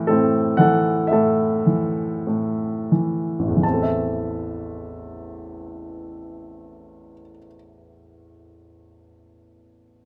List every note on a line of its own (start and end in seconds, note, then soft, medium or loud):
0.00 0.09 A2 soft
0.00 0.57 E3 soft
0.07 1.10 A2 soft
0.07 0.56 C4 soft
0.07 0.59 A4 medium
0.57 1.65 E3 soft
0.57 1.09 A4 soft
0.57 1.12 F#5 medium
1.07 2.87 E5 soft
1.11 2.25 A2 soft
1.11 2.90 A4 soft
1.66 2.90 E3 soft
2.27 3.59 A2 soft
2.92 3.55 E3 soft
3.39 7.12 A1 soft
3.48 7.21 E2 soft
3.57 7.30 E3 soft
3.63 7.38 C4 soft
3.63 7.36 A5 soft
3.74 7.47 A4 soft
3.82 7.55 E5 soft